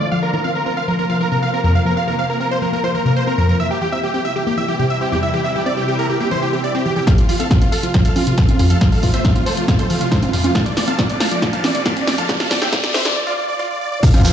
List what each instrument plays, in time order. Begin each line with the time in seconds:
Already playing: ambient pad F3 F4
0.01 synth pluck A3, supersaw synth D5, closed hi-hat
0.12 ambient pad C3 A#3, synth pluck F3, supersaw synth F5
0.23 supersaw synth A#4
0.33 synth pluck E3, supersaw synth A#4
0.44 synth pluck C4, supersaw synth F5
0.55 supersaw synth A#4
0.66 synth pluck C4, supersaw synth A#4
0.77 supersaw synth F5
0.88 synth pluck F3, supersaw synth A#4, closed hi-hat
0.99 synth pluck A#3, supersaw synth A#4, closed hi-hat
1.10 synth pluck F3, supersaw synth F5
1.20 synth pluck E3, supersaw synth A#4
1.31 synth pluck C3, supersaw synth A#4
1.42 supersaw synth F5
1.53 synth pluck C4, supersaw synth A#4
1.64 synth pluck F2, supersaw synth A#4
1.75 synth pluck F3, supersaw synth F5
1.86 synth pluck F3, supersaw synth A#4, closed hi-hat
1.97 supersaw synth F5, closed hi-hat
2.07 synth pluck E3, supersaw synth A#4
2.18 synth pluck C4, supersaw synth F5
2.29 supersaw synth A#4, closed hi-hat
2.40 synth pluck C4, supersaw synth A#4, closed hi-hat
2.51 supersaw synth C5
2.62 synth pluck F3, supersaw synth A#4, closed hi-hat
2.73 synth pluck A#3, supersaw synth A#4, closed hi-hat
2.83 synth pluck F3, supersaw synth C5, closed hi-hat
2.94 synth pluck E3, supersaw synth A#4
3.05 synth pluck C3, supersaw synth A#4, closed hi-hat
3.16 supersaw synth C5, closed hi-hat
3.27 synth pluck C4, supersaw synth A#4, closed hi-hat
3.38 synth pluck F2, supersaw synth A#4
3.49 synth pluck F3, supersaw synth A#4, closed hi-hat
3.59 ambient pad C3 E3 G3 E4, synth pluck E3, supersaw synth E5, closed hi-hat
3.70 supersaw synth G4, closed hi-hat
3.81 synth pluck E3, supersaw synth G4
3.92 synth pluck C4, supersaw synth E5, closed hi-hat
4.03 supersaw synth G4, closed hi-hat
4.14 synth pluck C4, supersaw synth G4, closed hi-hat
4.25 supersaw synth E5
4.36 synth pluck E3, supersaw synth G4, closed hi-hat
4.47 synth pluck A#3, supersaw synth G4, closed hi-hat
4.57 synth pluck E3, supersaw synth E5, closed hi-hat
4.68 synth pluck E3, supersaw synth G4
4.79 synth pluck C3, supersaw synth G4, closed hi-hat
4.90 supersaw synth E5, closed hi-hat
5.01 synth pluck C4, supersaw synth G4, closed hi-hat
5.12 synth pluck E2, supersaw synth G4
5.23 synth pluck E3, supersaw synth E5, closed hi-hat
5.33 synth pluck E3, supersaw synth G4, closed hi-hat
5.44 supersaw synth E5, closed hi-hat
5.55 synth pluck E3, supersaw synth G4
5.66 synth pluck C4, supersaw synth D5, closed hi-hat
5.77 supersaw synth G4, closed hi-hat
5.88 synth pluck C4, supersaw synth G4, closed hi-hat
5.99 supersaw synth A#4
6.09 synth pluck E3, supersaw synth G4, closed hi-hat
6.20 synth pluck A#3, supersaw synth G4, closed hi-hat
6.31 synth pluck E3, supersaw synth C5, closed hi-hat
6.42 synth pluck E4, supersaw synth G4
6.53 synth pluck C4, supersaw synth G4, closed hi-hat
6.64 supersaw synth D5, closed hi-hat
6.75 synth pluck C4, supersaw synth G4, closed hi-hat
6.85 synth pluck E3, supersaw synth G4
6.96 synth pluck E3, supersaw synth G4, closed hi-hat
7.07 ambient pad C3 F3 A3 F4, synth pluck F3, supersaw synth A4 F5, kick, snare, closed hi-hat, riser
7.18 supersaw synth F4, closed hi-hat
7.29 synth pluck E3, supersaw synth F4, open hi-hat
7.39 synth pluck C4, supersaw synth A4 F5, closed hi-hat
7.51 supersaw synth F4, kick, snare, closed hi-hat
7.61 synth pluck C4, supersaw synth F4, closed hi-hat
7.72 supersaw synth A4 F5, open hi-hat
7.83 synth pluck F3, supersaw synth F4, closed hi-hat
7.94 synth pluck A3, supersaw synth F4, kick, snare, closed hi-hat
8.05 synth pluck F3, supersaw synth A4 F5, closed hi-hat
8.16 synth pluck E3, supersaw synth F4, open hi-hat, high conga
8.27 synth pluck C3, supersaw synth F4, closed hi-hat
8.38 supersaw synth A4 F5, kick, snare, closed hi-hat
8.48 synth pluck C4, supersaw synth F4, closed hi-hat, high conga
8.59 synth pluck F2, supersaw synth F4, open hi-hat, high conga
8.70 synth pluck F3, supersaw synth A4 F5, closed hi-hat
8.81 synth pluck F3, supersaw synth F4, kick, snare, closed hi-hat
8.92 supersaw synth A4 F5, open hi-hat
9.03 synth pluck E3, supersaw synth F4, kick, open hi-hat
9.14 synth pluck C4, supersaw synth C5 E5, closed hi-hat
9.24 supersaw synth F4, kick, snare, closed hi-hat
9.35 synth pluck C4, supersaw synth F4, closed hi-hat
9.46 supersaw synth A4 C5, open hi-hat
9.57 synth pluck F3, supersaw synth F4, closed hi-hat
9.68 synth pluck A3, supersaw synth F4, kick, snare, closed hi-hat
9.79 synth pluck F3, supersaw synth A4 C5, closed hi-hat
9.90 synth pluck E3, supersaw synth F4, open hi-hat
10.00 synth pluck C3, supersaw synth F4, closed hi-hat
10.11 supersaw synth A4 C5, kick, snare, closed hi-hat
10.22 synth pluck C4, supersaw synth F4, closed hi-hat, high conga
10.33 synth pluck F2, supersaw synth F4, open hi-hat
10.44 synth pluck F3, supersaw synth F4, closed hi-hat, high conga
10.55 ambient pad D3, synth pluck F3, supersaw synth F5 A5, kick, snare, closed hi-hat
10.66 supersaw synth D5, closed hi-hat
10.77 synth pluck E3, supersaw synth D5, snare, open hi-hat
10.88 synth pluck C4, supersaw synth F5 A5, closed hi-hat
10.98 supersaw synth D5, kick, snare, closed hi-hat
11.09 synth pluck C4, supersaw synth D5, closed hi-hat
11.20 supersaw synth F5 A5, snare, open hi-hat
11.31 synth pluck F3, supersaw synth D5, closed hi-hat
11.42 synth pluck A3, supersaw synth D5, kick, snare, closed hi-hat
11.53 synth pluck F3, supersaw synth F5 A5, closed hi-hat
11.64 synth pluck E3, supersaw synth D5, snare, open hi-hat, high conga
11.75 synth pluck C3, supersaw synth D5, closed hi-hat
11.86 supersaw synth F5 A5, kick, snare, closed hi-hat
11.96 synth pluck C4, supersaw synth D5, closed hi-hat, high conga
12.07 synth pluck F2, supersaw synth D5, snare, open hi-hat, high conga
12.18 synth pluck F3, supersaw synth F5 A5, closed hi-hat
12.29 synth pluck F3, supersaw synth D5, kick, snare, closed hi-hat
12.40 supersaw synth F5 A5, snare, open hi-hat
12.51 synth pluck E3, supersaw synth D5, kick, snare, open hi-hat
12.62 synth pluck C4, supersaw synth E5 G5, snare, closed hi-hat
12.73 supersaw synth D5, kick, snare, closed hi-hat
12.83 synth pluck C4, supersaw synth D5, snare, closed hi-hat
12.94 supersaw synth C5 E5, snare, open hi-hat
13.05 synth pluck F3, supersaw synth D5, snare, closed hi-hat
13.16 supersaw synth D5, swell
13.27 supersaw synth F4 D5
13.38 supersaw synth D5
13.48 supersaw synth D5
13.59 supersaw synth F4 D5
13.70 supersaw synth D5
13.81 supersaw synth D5
13.92 supersaw synth D5
14.03 synth pluck F3, supersaw synth A4 F5, kick, closed hi-hat, crash, sub drop, shekere
14.13 analog synth bass F2, supersaw synth F4, closed hi-hat, high conga, shekere
14.25 analog synth bass F2, synth pluck E3, supersaw synth F4, open hi-hat, shekere